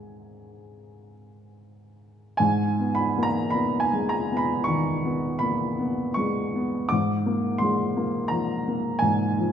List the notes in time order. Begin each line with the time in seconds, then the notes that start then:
Already playing: G#2 G#3 B3 D#4 G#4 G#5
2.37 G#2 G#5
2.80 B3
2.95 B5
3.18 A#3
3.23 A#5
3.50 B3 B5
3.80 G#5
3.93 G#3
4.09 A#5
4.32 B3
4.37 B5
4.64 D#3 C#6
5.05 B3
5.39 A#3 B5
5.79 B3
6.14 G#3 C#6
6.56 B3
6.89 G#2 D6
7.26 A#3
7.58 G#3 C6
7.97 A#3
8.28 F3 A#5
8.68 A#3
8.99 G#2 G#5
9.38 F3